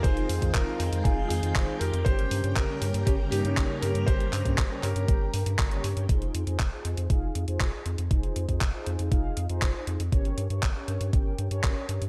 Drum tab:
HH |xxoxx-oxx-oxo-ox|xxoxx-oxx-oxx-ox|xxoxx-oxx-oxoxox|xxxxx-xxx-xxx-xx|
CP |----x-------x---|----x-------x---|--x-x-x-----x---|----x-------x---|
BD |o--oo---o---o---|o---o---o---o---|o--oo---o---o---|o---o---o---o---|

HH |xxxxx-xxx-xxx-xx|xxxxx-xxx-xxx-xx|
CP |----x-------x---|----x-------x---|
BD |o--oo---o---o---|o---o---o---o---|